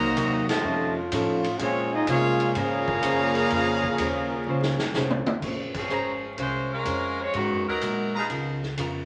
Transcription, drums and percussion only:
0, 0, Header, 1, 2, 480
1, 0, Start_track
1, 0, Key_signature, -5, "minor"
1, 0, Tempo, 478851
1, 1600, Time_signature, 4, 2, 24, 8
1, 9072, End_track
2, 0, Start_track
2, 0, Title_t, "Drums"
2, 165, Note_on_c, 9, 44, 55
2, 165, Note_on_c, 9, 51, 77
2, 167, Note_on_c, 9, 36, 28
2, 265, Note_off_c, 9, 44, 0
2, 265, Note_off_c, 9, 51, 0
2, 267, Note_off_c, 9, 36, 0
2, 491, Note_on_c, 9, 51, 76
2, 496, Note_on_c, 9, 38, 105
2, 592, Note_off_c, 9, 51, 0
2, 597, Note_off_c, 9, 38, 0
2, 1119, Note_on_c, 9, 44, 71
2, 1119, Note_on_c, 9, 51, 85
2, 1124, Note_on_c, 9, 36, 32
2, 1220, Note_off_c, 9, 44, 0
2, 1220, Note_off_c, 9, 51, 0
2, 1224, Note_off_c, 9, 36, 0
2, 1446, Note_on_c, 9, 51, 59
2, 1546, Note_off_c, 9, 51, 0
2, 1597, Note_on_c, 9, 51, 72
2, 1601, Note_on_c, 9, 36, 29
2, 1697, Note_off_c, 9, 51, 0
2, 1702, Note_off_c, 9, 36, 0
2, 2075, Note_on_c, 9, 44, 67
2, 2075, Note_on_c, 9, 51, 82
2, 2081, Note_on_c, 9, 36, 27
2, 2176, Note_off_c, 9, 44, 0
2, 2176, Note_off_c, 9, 51, 0
2, 2181, Note_off_c, 9, 36, 0
2, 2404, Note_on_c, 9, 51, 56
2, 2505, Note_off_c, 9, 51, 0
2, 2557, Note_on_c, 9, 51, 75
2, 2561, Note_on_c, 9, 36, 21
2, 2657, Note_off_c, 9, 51, 0
2, 2661, Note_off_c, 9, 36, 0
2, 2885, Note_on_c, 9, 36, 86
2, 2985, Note_off_c, 9, 36, 0
2, 3032, Note_on_c, 9, 44, 67
2, 3032, Note_on_c, 9, 51, 78
2, 3040, Note_on_c, 9, 36, 26
2, 3132, Note_off_c, 9, 44, 0
2, 3132, Note_off_c, 9, 51, 0
2, 3140, Note_off_c, 9, 36, 0
2, 3356, Note_on_c, 9, 51, 58
2, 3456, Note_off_c, 9, 51, 0
2, 3511, Note_on_c, 9, 51, 70
2, 3519, Note_on_c, 9, 36, 28
2, 3612, Note_off_c, 9, 51, 0
2, 3619, Note_off_c, 9, 36, 0
2, 3844, Note_on_c, 9, 36, 61
2, 3944, Note_off_c, 9, 36, 0
2, 3991, Note_on_c, 9, 44, 57
2, 3991, Note_on_c, 9, 51, 82
2, 3999, Note_on_c, 9, 36, 21
2, 4092, Note_off_c, 9, 44, 0
2, 4092, Note_off_c, 9, 51, 0
2, 4099, Note_off_c, 9, 36, 0
2, 4637, Note_on_c, 9, 38, 67
2, 4738, Note_off_c, 9, 38, 0
2, 4795, Note_on_c, 9, 38, 90
2, 4896, Note_off_c, 9, 38, 0
2, 4948, Note_on_c, 9, 44, 62
2, 4953, Note_on_c, 9, 38, 81
2, 5049, Note_off_c, 9, 44, 0
2, 5054, Note_off_c, 9, 38, 0
2, 5117, Note_on_c, 9, 47, 88
2, 5217, Note_off_c, 9, 47, 0
2, 5277, Note_on_c, 9, 47, 118
2, 5377, Note_off_c, 9, 47, 0
2, 5435, Note_on_c, 9, 49, 74
2, 5436, Note_on_c, 9, 36, 72
2, 5535, Note_off_c, 9, 49, 0
2, 5536, Note_off_c, 9, 36, 0
2, 5760, Note_on_c, 9, 36, 81
2, 5760, Note_on_c, 9, 49, 69
2, 5860, Note_off_c, 9, 49, 0
2, 5861, Note_off_c, 9, 36, 0
2, 5912, Note_on_c, 9, 44, 56
2, 6013, Note_off_c, 9, 44, 0
2, 6393, Note_on_c, 9, 51, 63
2, 6395, Note_on_c, 9, 36, 21
2, 6493, Note_off_c, 9, 51, 0
2, 6495, Note_off_c, 9, 36, 0
2, 6869, Note_on_c, 9, 44, 63
2, 6869, Note_on_c, 9, 51, 68
2, 6875, Note_on_c, 9, 36, 20
2, 6970, Note_off_c, 9, 44, 0
2, 6970, Note_off_c, 9, 51, 0
2, 6975, Note_off_c, 9, 36, 0
2, 7352, Note_on_c, 9, 51, 57
2, 7357, Note_on_c, 9, 36, 21
2, 7453, Note_off_c, 9, 51, 0
2, 7457, Note_off_c, 9, 36, 0
2, 7833, Note_on_c, 9, 44, 58
2, 7833, Note_on_c, 9, 51, 68
2, 7838, Note_on_c, 9, 36, 23
2, 7933, Note_off_c, 9, 44, 0
2, 7933, Note_off_c, 9, 51, 0
2, 7938, Note_off_c, 9, 36, 0
2, 8316, Note_on_c, 9, 51, 62
2, 8320, Note_on_c, 9, 36, 23
2, 8416, Note_off_c, 9, 51, 0
2, 8420, Note_off_c, 9, 36, 0
2, 8647, Note_on_c, 9, 38, 35
2, 8748, Note_off_c, 9, 38, 0
2, 8795, Note_on_c, 9, 44, 54
2, 8795, Note_on_c, 9, 51, 68
2, 8802, Note_on_c, 9, 36, 23
2, 8895, Note_off_c, 9, 44, 0
2, 8895, Note_off_c, 9, 51, 0
2, 8903, Note_off_c, 9, 36, 0
2, 9072, End_track
0, 0, End_of_file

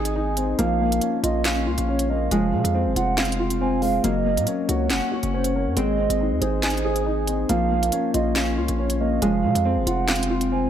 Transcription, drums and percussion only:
0, 0, Header, 1, 2, 480
1, 0, Start_track
1, 0, Key_signature, -5, "minor"
1, 0, Tempo, 431655
1, 653, Time_signature, 4, 2, 24, 8
1, 11896, End_track
2, 0, Start_track
2, 0, Title_t, "Drums"
2, 57, Note_on_c, 9, 42, 73
2, 168, Note_off_c, 9, 42, 0
2, 410, Note_on_c, 9, 42, 77
2, 521, Note_off_c, 9, 42, 0
2, 653, Note_on_c, 9, 42, 83
2, 764, Note_off_c, 9, 42, 0
2, 1024, Note_on_c, 9, 42, 76
2, 1128, Note_off_c, 9, 42, 0
2, 1128, Note_on_c, 9, 42, 86
2, 1239, Note_off_c, 9, 42, 0
2, 1375, Note_on_c, 9, 42, 84
2, 1487, Note_off_c, 9, 42, 0
2, 1612, Note_on_c, 9, 42, 85
2, 1614, Note_on_c, 9, 38, 122
2, 1622, Note_on_c, 9, 39, 99
2, 1723, Note_off_c, 9, 42, 0
2, 1725, Note_off_c, 9, 38, 0
2, 1734, Note_off_c, 9, 39, 0
2, 1977, Note_on_c, 9, 42, 72
2, 2088, Note_off_c, 9, 42, 0
2, 2214, Note_on_c, 9, 42, 73
2, 2326, Note_off_c, 9, 42, 0
2, 2573, Note_on_c, 9, 42, 86
2, 2684, Note_off_c, 9, 42, 0
2, 2945, Note_on_c, 9, 42, 78
2, 3056, Note_off_c, 9, 42, 0
2, 3295, Note_on_c, 9, 42, 86
2, 3407, Note_off_c, 9, 42, 0
2, 3533, Note_on_c, 9, 38, 120
2, 3533, Note_on_c, 9, 42, 52
2, 3542, Note_on_c, 9, 39, 97
2, 3614, Note_off_c, 9, 42, 0
2, 3614, Note_on_c, 9, 42, 68
2, 3645, Note_off_c, 9, 38, 0
2, 3653, Note_off_c, 9, 39, 0
2, 3693, Note_off_c, 9, 42, 0
2, 3693, Note_on_c, 9, 42, 89
2, 3805, Note_off_c, 9, 42, 0
2, 3896, Note_on_c, 9, 42, 72
2, 4008, Note_off_c, 9, 42, 0
2, 4249, Note_on_c, 9, 46, 55
2, 4360, Note_off_c, 9, 46, 0
2, 4493, Note_on_c, 9, 42, 86
2, 4604, Note_off_c, 9, 42, 0
2, 4864, Note_on_c, 9, 42, 77
2, 4968, Note_off_c, 9, 42, 0
2, 4968, Note_on_c, 9, 42, 84
2, 5079, Note_off_c, 9, 42, 0
2, 5214, Note_on_c, 9, 42, 83
2, 5326, Note_off_c, 9, 42, 0
2, 5451, Note_on_c, 9, 42, 84
2, 5453, Note_on_c, 9, 38, 120
2, 5461, Note_on_c, 9, 39, 97
2, 5562, Note_off_c, 9, 42, 0
2, 5564, Note_off_c, 9, 38, 0
2, 5572, Note_off_c, 9, 39, 0
2, 5816, Note_on_c, 9, 42, 71
2, 5927, Note_off_c, 9, 42, 0
2, 6053, Note_on_c, 9, 42, 73
2, 6164, Note_off_c, 9, 42, 0
2, 6413, Note_on_c, 9, 42, 82
2, 6524, Note_off_c, 9, 42, 0
2, 6785, Note_on_c, 9, 42, 77
2, 6896, Note_off_c, 9, 42, 0
2, 7135, Note_on_c, 9, 42, 86
2, 7246, Note_off_c, 9, 42, 0
2, 7373, Note_on_c, 9, 42, 87
2, 7374, Note_on_c, 9, 38, 122
2, 7382, Note_on_c, 9, 39, 98
2, 7454, Note_off_c, 9, 42, 0
2, 7454, Note_on_c, 9, 42, 70
2, 7485, Note_off_c, 9, 38, 0
2, 7493, Note_off_c, 9, 39, 0
2, 7533, Note_off_c, 9, 42, 0
2, 7533, Note_on_c, 9, 42, 50
2, 7644, Note_off_c, 9, 42, 0
2, 7736, Note_on_c, 9, 42, 72
2, 7847, Note_off_c, 9, 42, 0
2, 8090, Note_on_c, 9, 42, 77
2, 8201, Note_off_c, 9, 42, 0
2, 8333, Note_on_c, 9, 42, 87
2, 8444, Note_off_c, 9, 42, 0
2, 8705, Note_on_c, 9, 42, 76
2, 8809, Note_off_c, 9, 42, 0
2, 8809, Note_on_c, 9, 42, 84
2, 8920, Note_off_c, 9, 42, 0
2, 9055, Note_on_c, 9, 42, 88
2, 9166, Note_off_c, 9, 42, 0
2, 9292, Note_on_c, 9, 42, 86
2, 9294, Note_on_c, 9, 38, 115
2, 9302, Note_on_c, 9, 39, 98
2, 9403, Note_off_c, 9, 42, 0
2, 9405, Note_off_c, 9, 38, 0
2, 9414, Note_off_c, 9, 39, 0
2, 9656, Note_on_c, 9, 42, 72
2, 9767, Note_off_c, 9, 42, 0
2, 9894, Note_on_c, 9, 42, 73
2, 10005, Note_off_c, 9, 42, 0
2, 10253, Note_on_c, 9, 42, 84
2, 10364, Note_off_c, 9, 42, 0
2, 10624, Note_on_c, 9, 42, 79
2, 10736, Note_off_c, 9, 42, 0
2, 10975, Note_on_c, 9, 42, 86
2, 11086, Note_off_c, 9, 42, 0
2, 11213, Note_on_c, 9, 38, 117
2, 11213, Note_on_c, 9, 42, 55
2, 11221, Note_on_c, 9, 39, 95
2, 11293, Note_off_c, 9, 42, 0
2, 11293, Note_on_c, 9, 42, 71
2, 11324, Note_off_c, 9, 38, 0
2, 11332, Note_off_c, 9, 39, 0
2, 11373, Note_off_c, 9, 42, 0
2, 11373, Note_on_c, 9, 42, 88
2, 11484, Note_off_c, 9, 42, 0
2, 11576, Note_on_c, 9, 42, 72
2, 11687, Note_off_c, 9, 42, 0
2, 11896, End_track
0, 0, End_of_file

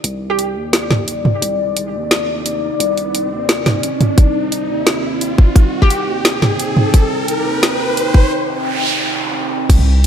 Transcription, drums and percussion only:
0, 0, Header, 1, 2, 480
1, 0, Start_track
1, 0, Key_signature, -3, "minor"
1, 0, Tempo, 344828
1, 58, Time_signature, 4, 2, 24, 8
1, 14015, End_track
2, 0, Start_track
2, 0, Title_t, "Drums"
2, 57, Note_on_c, 9, 42, 79
2, 196, Note_off_c, 9, 42, 0
2, 539, Note_on_c, 9, 42, 64
2, 678, Note_off_c, 9, 42, 0
2, 1018, Note_on_c, 9, 38, 122
2, 1018, Note_on_c, 9, 42, 80
2, 1157, Note_off_c, 9, 38, 0
2, 1157, Note_off_c, 9, 42, 0
2, 1260, Note_on_c, 9, 38, 61
2, 1260, Note_on_c, 9, 45, 75
2, 1400, Note_off_c, 9, 38, 0
2, 1400, Note_off_c, 9, 45, 0
2, 1500, Note_on_c, 9, 42, 67
2, 1639, Note_off_c, 9, 42, 0
2, 1741, Note_on_c, 9, 45, 79
2, 1880, Note_off_c, 9, 45, 0
2, 1981, Note_on_c, 9, 42, 79
2, 2120, Note_off_c, 9, 42, 0
2, 2458, Note_on_c, 9, 42, 65
2, 2597, Note_off_c, 9, 42, 0
2, 2938, Note_on_c, 9, 38, 126
2, 2938, Note_on_c, 9, 42, 80
2, 3077, Note_off_c, 9, 38, 0
2, 3077, Note_off_c, 9, 42, 0
2, 3420, Note_on_c, 9, 42, 67
2, 3560, Note_off_c, 9, 42, 0
2, 3901, Note_on_c, 9, 42, 77
2, 4041, Note_off_c, 9, 42, 0
2, 4141, Note_on_c, 9, 42, 35
2, 4280, Note_off_c, 9, 42, 0
2, 4379, Note_on_c, 9, 42, 64
2, 4519, Note_off_c, 9, 42, 0
2, 4857, Note_on_c, 9, 38, 124
2, 4857, Note_on_c, 9, 42, 79
2, 4996, Note_off_c, 9, 38, 0
2, 4996, Note_off_c, 9, 42, 0
2, 5097, Note_on_c, 9, 38, 61
2, 5097, Note_on_c, 9, 42, 35
2, 5097, Note_on_c, 9, 45, 72
2, 5236, Note_off_c, 9, 38, 0
2, 5236, Note_off_c, 9, 42, 0
2, 5236, Note_off_c, 9, 45, 0
2, 5336, Note_on_c, 9, 42, 65
2, 5475, Note_off_c, 9, 42, 0
2, 5576, Note_on_c, 9, 42, 36
2, 5576, Note_on_c, 9, 45, 77
2, 5715, Note_off_c, 9, 42, 0
2, 5715, Note_off_c, 9, 45, 0
2, 5814, Note_on_c, 9, 36, 114
2, 5815, Note_on_c, 9, 42, 73
2, 5953, Note_off_c, 9, 36, 0
2, 5954, Note_off_c, 9, 42, 0
2, 6294, Note_on_c, 9, 42, 62
2, 6433, Note_off_c, 9, 42, 0
2, 6773, Note_on_c, 9, 38, 119
2, 6773, Note_on_c, 9, 42, 77
2, 6913, Note_off_c, 9, 38, 0
2, 6913, Note_off_c, 9, 42, 0
2, 7256, Note_on_c, 9, 42, 62
2, 7396, Note_off_c, 9, 42, 0
2, 7495, Note_on_c, 9, 36, 107
2, 7634, Note_off_c, 9, 36, 0
2, 7734, Note_on_c, 9, 36, 113
2, 7739, Note_on_c, 9, 42, 75
2, 7874, Note_off_c, 9, 36, 0
2, 7878, Note_off_c, 9, 42, 0
2, 8101, Note_on_c, 9, 36, 60
2, 8219, Note_on_c, 9, 42, 62
2, 8240, Note_off_c, 9, 36, 0
2, 8358, Note_off_c, 9, 42, 0
2, 8699, Note_on_c, 9, 38, 119
2, 8699, Note_on_c, 9, 42, 76
2, 8838, Note_off_c, 9, 38, 0
2, 8838, Note_off_c, 9, 42, 0
2, 8941, Note_on_c, 9, 38, 59
2, 8941, Note_on_c, 9, 45, 78
2, 9080, Note_off_c, 9, 38, 0
2, 9080, Note_off_c, 9, 45, 0
2, 9180, Note_on_c, 9, 42, 63
2, 9320, Note_off_c, 9, 42, 0
2, 9419, Note_on_c, 9, 45, 80
2, 9558, Note_off_c, 9, 45, 0
2, 9657, Note_on_c, 9, 36, 111
2, 9658, Note_on_c, 9, 42, 76
2, 9797, Note_off_c, 9, 36, 0
2, 9797, Note_off_c, 9, 42, 0
2, 10138, Note_on_c, 9, 42, 65
2, 10277, Note_off_c, 9, 42, 0
2, 10619, Note_on_c, 9, 38, 117
2, 10619, Note_on_c, 9, 42, 81
2, 10759, Note_off_c, 9, 38, 0
2, 10759, Note_off_c, 9, 42, 0
2, 11098, Note_on_c, 9, 42, 65
2, 11237, Note_off_c, 9, 42, 0
2, 11336, Note_on_c, 9, 36, 99
2, 11475, Note_off_c, 9, 36, 0
2, 13496, Note_on_c, 9, 36, 114
2, 13500, Note_on_c, 9, 42, 83
2, 13500, Note_on_c, 9, 49, 101
2, 13625, Note_on_c, 9, 45, 39
2, 13635, Note_off_c, 9, 36, 0
2, 13639, Note_off_c, 9, 42, 0
2, 13639, Note_off_c, 9, 49, 0
2, 13764, Note_off_c, 9, 45, 0
2, 14015, End_track
0, 0, End_of_file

